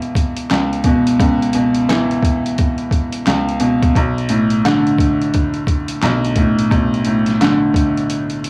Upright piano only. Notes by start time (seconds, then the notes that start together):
Already playing: C#2 B2 E3
0.51 C#2
0.86 B2
1.19 C#2
1.55 B2
1.89 E3
3.27 C#2
3.60 B2
3.97 B1
4.30 A2
4.65 D3
6.03 B1
6.37 A2
6.71 B1
7.06 A2
7.41 D3